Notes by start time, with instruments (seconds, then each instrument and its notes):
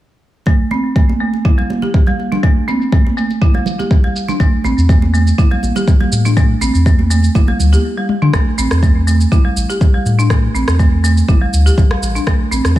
0.46 marimba A3, kick, muted conga
0.71 marimba C4, muted conga, high conga
0.85 shaker
0.96 marimba A3, kick, muted conga
1.09 high conga
1.20 marimba A3, shaker
1.33 muted conga, shaker
1.45 marimba E4, kick, high conga
1.58 marimba G3, muted conga
1.70 high conga, shaker
1.82 marimba G4, muted conga, low conga, shaker
1.94 kick, shaker
2.07 marimba G3, muted conga, high conga, low conga
2.19 high conga, shaker
2.32 marimba D4, low conga, shaker
2.43 marimba A3, kick, muted conga, shaker
2.68 marimba C4, muted conga, high conga, shaker
2.81 shaker
2.92 marimba A3, kick, muted conga, shaker
3.07 high conga
3.17 marimba A3, shaker
3.30 muted conga, shaker
3.42 marimba E4, kick, high conga, shaker
3.54 marimba G3, muted conga, high conga
3.66 low conga, shaker
3.79 marimba G4, muted conga, high conga, shaker
3.91 kick, shaker
4.04 marimba G3, muted conga, high conga
4.16 shaker
4.28 marimba D4, low conga, shaker
4.40 analog synth bass A1, marimba A3, kick, muted conga, shaker
4.64 analog synth bass A1, marimba C4, muted conga, high conga, shaker
4.78 analog synth bass E2, shaker
4.89 marimba A3, kick, muted conga, shaker
5.02 high conga
5.14 marimba A3, shaker
5.27 muted conga, shaker
5.38 marimba E4, kick, high conga, shaker
5.51 marimba G3, muted conga
5.63 analog synth bass A1, high conga, shaker
5.76 marimba G4, muted conga, low conga, shaker
5.88 kick, shaker
6.00 marimba G3, muted conga, high conga, low conga
6.12 analog synth bass A2, high conga, shaker
6.25 marimba D4, low conga, shaker
6.37 marimba A3, kick, muted conga, shaker
6.61 analog synth bass A1, marimba C4, muted conga, high conga, shaker
6.75 analog synth bass E2, shaker
6.86 marimba A3, kick, muted conga, shaker
6.99 high conga
7.11 marimba A3, shaker
7.22 muted conga, shaker
7.35 analog synth bass G1, marimba E4, kick, high conga, shaker
7.48 marimba G3, muted conga, high conga
7.59 analog synth bass D2, low conga, shaker
7.72 marimba G4, muted conga, high conga, shaker
7.97 marimba G3
8.09 high tom
8.22 marimba D4, mid tom
8.33 analog synth bass A1, marimba A3, kick, cross-stick, shaker
8.58 analog synth bass A1, marimba C4, shaker
8.71 analog synth bass E2, cross-stick, shaker
8.83 marimba A3, kick, shaker
9.07 marimba A3, shaker
9.21 shaker
9.32 marimba E4, kick, shaker
9.45 marimba G3
9.57 analog synth bass A1, shaker
9.70 marimba G4, shaker
9.81 kick, shaker
9.94 marimba G3
10.06 analog synth bass A2, shaker
10.19 marimba D4, shaker
10.30 marimba A3, kick, cross-stick, shaker
10.55 analog synth bass A1, marimba C4, shaker
10.68 analog synth bass E2, cross-stick, shaker
10.79 marimba A3, kick, shaker
11.04 marimba A3, shaker
11.17 shaker
11.28 analog synth bass G1, marimba E4, kick, shaker
11.41 marimba G3
11.53 analog synth bass D2, shaker
11.66 marimba G4, shaker
11.78 analog synth bass A1, kick, shaker
11.91 marimba G3, cross-stick
12.02 analog synth bass A1, shaker
12.15 marimba D4, shaker
12.27 analog synth bass A1, marimba A3, kick, cross-stick, shaker
12.51 analog synth bass A1, marimba C4, shaker
12.64 analog synth bass E2, cross-stick, shaker